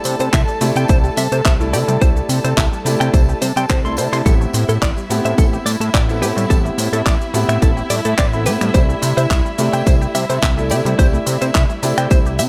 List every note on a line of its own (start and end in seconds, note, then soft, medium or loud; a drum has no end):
0.00 0.58 A3 medium
0.00 0.58 D4 medium
0.00 0.58 E4 medium
0.00 0.59 G4 medium
0.00 4.27 A4 medium
0.00 4.27 A5 medium
0.00 tambourine medium
0.05 0.16 C3 loud
0.05 0.12 C4 medium
0.05 open hi-hat loud
0.05 cabasa medium
0.19 0.29 C3 medium
0.19 0.27 E4 medium
0.19 0.24 C5 medium
0.19 closed hi-hat medium
0.19 tambourine soft
0.19 cabasa soft
0.33 0.44 C2 loud
0.33 0.38 E4 medium
0.33 0.41 E5 loud
0.33 kick loud
0.33 clap loud
0.33 closed hi-hat soft
0.33 tambourine soft
0.33 cabasa soft
0.48 0.55 G3 medium
0.48 tambourine soft
0.48 cabasa soft
0.61 0.72 C3 medium
0.61 1.14 A3 loud
0.61 0.65 A3 loud
0.61 1.14 D4 medium
0.61 1.14 E4 medium
0.61 1.14 G4 loud
0.61 open hi-hat loud
0.61 tambourine medium
0.61 cabasa medium
0.76 0.85 C3 medium
0.76 0.80 C4 medium
0.76 0.86 G5 medium
0.76 closed hi-hat medium
0.76 tambourine soft
0.76 cabasa soft
0.88 1.10 C2 loud
0.88 0.93 E4 medium
0.88 0.97 C5 loud
0.88 kick loud
0.88 closed hi-hat medium
0.88 tambourine medium
0.88 cabasa soft
1.04 1.10 G4 medium
1.04 tambourine soft
1.04 cabasa soft
1.17 1.28 C3 medium
1.17 1.24 G3 medium
1.17 1.22 E5 medium
1.17 open hi-hat loud
1.17 tambourine loud
1.17 cabasa medium
1.32 1.41 C3 loud
1.32 1.38 A3 medium
1.32 1.36 C5 medium
1.32 closed hi-hat medium
1.32 tambourine soft
1.32 cabasa soft
1.45 1.75 C2 medium
1.45 1.56 C4 medium
1.45 1.53 E5 loud
1.45 kick loud
1.45 clap loud
1.45 closed hi-hat medium
1.45 tambourine medium
1.45 cabasa soft
1.60 1.98 A3 medium
1.60 1.98 D4 medium
1.60 1.66 E4 medium
1.60 1.98 E4 medium
1.60 1.99 A4 medium
1.60 tambourine soft
1.60 cabasa soft
1.73 1.84 C3 loud
1.73 1.78 G4 loud
1.73 1.78 D5 medium
1.73 open hi-hat loud
1.73 tambourine medium
1.73 cabasa medium
1.88 1.98 C3 medium
1.88 1.94 G3 loud
1.88 closed hi-hat medium
1.88 tambourine soft
1.88 cabasa soft
2.01 2.22 C2 loud
2.01 2.06 G3 medium
2.01 2.82 A3 medium
2.01 2.82 D4 medium
2.01 2.83 E4 medium
2.01 2.83 G4 medium
2.01 2.09 C5 loud
2.01 kick loud
2.01 closed hi-hat medium
2.01 tambourine medium
2.01 cabasa soft
2.16 2.22 A3 medium
2.16 tambourine soft
2.16 cabasa soft
2.29 2.40 C3 loud
2.29 2.36 C4 medium
2.29 open hi-hat loud
2.29 tambourine medium
2.29 cabasa medium
2.44 2.54 C3 loud
2.44 2.50 E4 medium
2.44 2.48 C5 medium
2.44 closed hi-hat medium
2.44 tambourine soft
2.44 cabasa soft
2.57 2.68 C2 loud
2.57 2.62 E4 medium
2.57 2.65 E5 loud
2.57 kick loud
2.57 clap loud
2.57 closed hi-hat soft
2.57 tambourine medium
2.57 cabasa soft
2.72 2.79 G3 medium
2.72 tambourine soft
2.72 cabasa soft
2.85 2.96 C3 medium
2.85 3.38 A3 loud
2.85 2.90 A3 loud
2.85 3.38 D4 medium
2.85 3.38 E4 medium
2.85 3.39 G4 loud
2.85 open hi-hat loud
2.85 tambourine loud
2.85 cabasa medium
3.00 3.10 C3 medium
3.00 3.04 C4 medium
3.00 3.10 G5 medium
3.00 finger snap medium
3.00 closed hi-hat medium
3.00 tambourine soft
3.00 cabasa soft
3.13 3.34 C2 loud
3.13 3.18 E4 medium
3.13 3.21 C5 medium
3.13 kick loud
3.13 closed hi-hat soft
3.13 tambourine medium
3.13 cabasa soft
3.29 3.35 G4 medium
3.29 tambourine soft
3.29 cabasa soft
3.42 3.52 C3 loud
3.42 3.52 G3 medium
3.42 3.46 C5 medium
3.42 open hi-hat loud
3.42 tambourine medium
3.42 cabasa medium
3.56 3.66 C3 loud
3.56 3.60 G3 loud
3.56 3.63 G5 loud
3.56 closed hi-hat medium
3.56 tambourine soft
3.56 cabasa soft
3.69 3.99 C2 medium
3.69 3.74 G3 loud
3.69 3.81 C5 loud
3.69 kick loud
3.69 clap loud
3.69 closed hi-hat soft
3.69 tambourine medium
3.69 cabasa soft
3.85 4.23 A3 medium
3.85 3.91 A3 loud
3.85 4.23 D4 medium
3.85 4.23 E4 medium
3.85 4.23 A4 medium
3.85 3.95 C6 medium
3.85 tambourine soft
3.85 cabasa soft
3.97 4.08 C3 loud
3.97 4.08 E4 medium
3.97 4.02 C5 medium
3.97 open hi-hat loud
3.97 tambourine loud
3.97 cabasa medium
4.12 4.22 C3 loud
4.12 4.19 E4 medium
4.12 4.17 C6 medium
4.12 finger snap medium
4.12 open hi-hat medium
4.12 tambourine soft
4.12 cabasa soft
4.25 4.46 A1 loud
4.25 4.30 G3 medium
4.25 5.06 B3 medium
4.25 5.07 C4 medium
4.25 12.49 E4 medium
4.25 5.07 E4 medium
4.25 5.07 G4 medium
4.25 4.33 A4 loud
4.25 12.49 E5 medium
4.25 kick loud
4.25 closed hi-hat medium
4.25 tambourine soft
4.25 cabasa soft
4.41 4.47 A3 medium
4.41 tambourine soft
4.41 cabasa soft
4.53 4.64 A2 loud
4.53 4.61 C4 medium
4.53 open hi-hat loud
4.53 tambourine medium
4.53 cabasa medium
4.68 4.78 A2 medium
4.68 4.75 E4 medium
4.68 4.73 A4 medium
4.68 closed hi-hat medium
4.68 tambourine soft
4.68 cabasa soft
4.82 4.93 A1 loud
4.82 4.86 E4 medium
4.82 4.89 D5 loud
4.82 kick loud
4.82 clap loud
4.82 closed hi-hat soft
4.82 tambourine medium
4.82 cabasa soft
4.97 5.03 G3 medium
4.97 tambourine soft
4.97 cabasa soft
5.09 5.21 A2 medium
5.09 5.14 A3 loud
5.09 5.63 B3 loud
5.09 5.63 C4 medium
5.09 5.63 E4 medium
5.09 5.63 G4 loud
5.09 open hi-hat loud
5.09 tambourine medium
5.09 cabasa medium
5.24 5.34 A2 medium
5.24 5.29 C4 medium
5.24 5.35 E5 medium
5.24 closed hi-hat medium
5.24 tambourine soft
5.24 cabasa soft
5.38 5.59 A1 medium
5.38 5.42 E4 medium
5.38 5.45 A4 medium
5.38 kick loud
5.38 closed hi-hat soft
5.38 tambourine medium
5.38 cabasa soft
5.53 5.59 G4 medium
5.53 tambourine soft
5.53 cabasa soft
5.66 5.76 A2 loud
5.66 5.73 G3 medium
5.66 5.70 D5 medium
5.66 open hi-hat loud
5.66 tambourine loud
5.66 cabasa medium
5.80 5.90 A2 loud
5.80 5.87 A3 medium
5.80 5.85 A4 medium
5.80 closed hi-hat medium
5.80 tambourine soft
5.80 cabasa soft
5.94 6.23 A1 medium
5.94 6.05 C4 medium
5.94 6.01 D5 loud
5.94 kick loud
5.94 clap loud
5.94 closed hi-hat soft
5.94 tambourine medium
5.94 cabasa soft
6.09 6.47 B3 medium
6.09 6.47 C4 medium
6.09 6.15 E4 medium
6.09 6.47 E4 medium
6.09 6.47 A4 medium
6.09 tambourine soft
6.09 cabasa soft
6.21 6.32 A2 loud
6.21 6.26 G4 loud
6.21 6.26 B4 medium
6.21 open hi-hat loud
6.21 tambourine medium
6.21 cabasa medium
6.36 6.46 A2 loud
6.36 6.43 G3 loud
6.36 closed hi-hat medium
6.36 tambourine soft
6.36 cabasa soft
6.49 6.71 A1 loud
6.49 6.54 G3 medium
6.49 7.31 B3 medium
6.49 7.31 C4 medium
6.49 7.31 E4 medium
6.49 7.32 G4 medium
6.49 6.57 A4 loud
6.49 kick loud
6.49 closed hi-hat medium
6.49 tambourine medium
6.49 cabasa soft
6.65 6.71 A3 medium
6.65 tambourine soft
6.65 cabasa soft
6.78 6.89 A2 loud
6.78 6.85 C4 medium
6.78 open hi-hat loud
6.78 tambourine loud
6.78 cabasa medium
6.93 7.02 A2 loud
6.93 6.99 E4 medium
6.93 6.97 A4 medium
6.93 closed hi-hat medium
6.93 tambourine soft
6.93 cabasa soft
7.06 7.17 A1 loud
7.06 7.10 E4 medium
7.06 7.13 D5 loud
7.06 kick loud
7.06 clap loud
7.06 closed hi-hat medium
7.06 tambourine medium
7.06 cabasa soft
7.21 7.27 G3 medium
7.21 tambourine soft
7.21 cabasa soft
7.34 7.45 A2 medium
7.34 7.38 A3 loud
7.34 7.87 B3 medium
7.34 7.87 C4 medium
7.34 7.87 E4 medium
7.34 7.87 G4 loud
7.34 open hi-hat loud
7.34 tambourine medium
7.34 cabasa medium
7.48 7.58 A2 medium
7.48 7.53 C4 medium
7.48 7.59 E5 medium
7.48 finger snap medium
7.48 closed hi-hat medium
7.48 tambourine soft
7.48 cabasa soft
7.62 7.83 A1 loud
7.62 7.66 E4 medium
7.62 7.69 A4 loud
7.62 kick loud
7.62 closed hi-hat medium
7.62 tambourine soft
7.62 cabasa soft
7.77 7.83 G4 medium
7.77 tambourine soft
7.77 cabasa soft
7.90 8.01 A2 loud
7.90 7.97 G3 medium
7.90 7.95 D5 medium
7.90 open hi-hat loud
7.90 tambourine medium
7.90 cabasa medium
8.05 8.15 A2 loud
8.05 8.11 A3 medium
8.05 8.09 A4 medium
8.05 closed hi-hat medium
8.05 tambourine soft
8.05 cabasa soft
8.18 8.48 A1 medium
8.18 8.29 C4 medium
8.18 8.26 D5 loud
8.18 kick loud
8.18 clap loud
8.18 closed hi-hat medium
8.18 tambourine soft
8.18 cabasa soft
8.33 8.71 B3 medium
8.33 8.71 C4 medium
8.33 8.39 E4 medium
8.33 8.71 E4 medium
8.33 8.72 A4 medium
8.33 tambourine soft
8.33 cabasa soft
8.46 8.57 A2 loud
8.46 8.50 G4 loud
8.46 8.51 B4 medium
8.46 open hi-hat loud
8.46 tambourine medium
8.46 cabasa medium
8.61 8.71 A2 loud
8.61 8.67 G3 loud
8.61 finger snap medium
8.61 closed hi-hat medium
8.61 tambourine soft
8.61 cabasa soft
8.74 8.95 C2 loud
8.74 8.78 G3 medium
8.74 9.55 A3 medium
8.74 9.55 D4 medium
8.74 9.56 E4 medium
8.74 9.56 G4 loud
8.74 8.82 C5 loud
8.74 kick loud
8.74 closed hi-hat medium
8.74 tambourine medium
8.74 cabasa soft
8.89 8.95 A3 medium
8.89 tambourine soft
8.89 cabasa soft
9.02 9.13 C3 loud
9.02 9.09 C4 medium
9.02 open hi-hat loud
9.02 tambourine medium
9.02 cabasa medium
9.17 9.27 C3 loud
9.17 9.23 E4 medium
9.17 9.21 C5 medium
9.17 closed hi-hat medium
9.17 tambourine soft
9.17 cabasa soft
9.30 9.41 C2 loud
9.30 9.34 E4 medium
9.30 9.38 E5 loud
9.30 kick loud
9.30 clap loud
9.30 closed hi-hat medium
9.30 tambourine medium
9.30 cabasa soft
9.45 9.51 G3 medium
9.45 tambourine soft
9.45 cabasa soft
9.58 9.69 C3 medium
9.58 10.11 A3 loud
9.58 9.63 A3 loud
9.58 10.11 D4 medium
9.58 10.12 E4 medium
9.58 10.12 G4 loud
9.58 open hi-hat loud
9.58 tambourine medium
9.58 cabasa medium
9.73 9.83 C3 medium
9.73 9.77 C4 medium
9.73 9.83 G5 medium
9.73 closed hi-hat medium
9.73 tambourine soft
9.73 cabasa soft
9.86 10.07 C2 loud
9.86 9.91 E4 medium
9.86 9.94 C5 loud
9.86 kick loud
9.86 closed hi-hat medium
9.86 tambourine medium
9.86 cabasa soft
10.01 10.08 G4 medium
10.01 tambourine soft
10.01 cabasa soft
10.15 10.25 C3 medium
10.15 10.22 G3 medium
10.15 10.19 E5 medium
10.15 open hi-hat loud
10.15 tambourine medium
10.15 cabasa medium
10.29 10.39 C3 loud
10.29 10.36 A3 medium
10.29 10.33 C5 medium
10.29 closed hi-hat medium
10.29 tambourine soft
10.29 cabasa soft
10.42 10.73 C2 medium
10.42 10.53 C4 medium
10.42 10.50 E5 loud
10.42 kick loud
10.42 clap loud
10.42 closed hi-hat medium
10.42 tambourine soft
10.42 cabasa soft
10.57 10.95 A3 medium
10.57 10.95 D4 medium
10.57 10.64 E4 medium
10.57 10.96 E4 medium
10.57 10.96 A4 medium
10.57 tambourine soft
10.57 cabasa soft
10.70 10.81 C3 loud
10.70 10.75 G4 loud
10.70 10.75 D5 medium
10.70 open hi-hat loud
10.70 tambourine medium
10.70 cabasa medium
10.85 10.95 C3 loud
10.85 10.92 G3 loud
10.85 closed hi-hat medium
10.85 tambourine soft
10.85 cabasa soft
10.98 11.19 C2 loud
10.98 11.03 G3 medium
10.98 11.79 A3 medium
10.98 11.79 D4 medium
10.98 11.80 E4 medium
10.98 11.80 G4 medium
10.98 11.06 C5 loud
10.98 kick loud
10.98 closed hi-hat medium
10.98 tambourine medium
10.98 cabasa soft
11.13 11.20 A3 medium
11.13 tambourine soft
11.13 cabasa soft
11.26 11.37 C3 loud
11.26 11.34 C4 medium
11.26 open hi-hat loud
11.26 tambourine medium
11.26 cabasa medium
11.41 11.51 C3 medium
11.41 11.48 E4 medium
11.41 11.46 C5 medium
11.41 closed hi-hat medium
11.41 tambourine soft
11.41 cabasa soft
11.54 11.66 C2 loud
11.54 11.59 E4 medium
11.54 11.62 E5 loud
11.54 kick loud
11.54 clap loud
11.54 closed hi-hat medium
11.54 tambourine medium
11.54 cabasa soft
11.70 11.76 G3 medium
11.70 tambourine soft
11.70 cabasa soft
11.82 11.93 C3 medium
11.82 12.35 A3 medium
11.82 11.87 A3 loud
11.82 12.36 D4 medium
11.82 12.36 E4 medium
11.82 12.36 G4 loud
11.82 open hi-hat loud
11.82 tambourine loud
11.82 cabasa medium
11.97 12.07 C3 medium
11.97 12.01 C4 medium
11.97 12.08 G5 medium
11.97 finger snap medium
11.97 closed hi-hat medium
11.97 tambourine soft
11.97 cabasa soft
12.10 12.40 C2 medium
12.10 12.15 E4 medium
12.10 12.18 C5 loud
12.10 kick loud
12.10 closed hi-hat medium
12.10 tambourine medium
12.10 cabasa soft
12.25 12.32 G4 medium
12.25 tambourine soft
12.25 cabasa soft
12.39 12.49 C3 medium
12.39 12.46 G4 medium
12.39 12.43 E5 medium
12.39 open hi-hat loud
12.39 tambourine medium
12.39 cabasa medium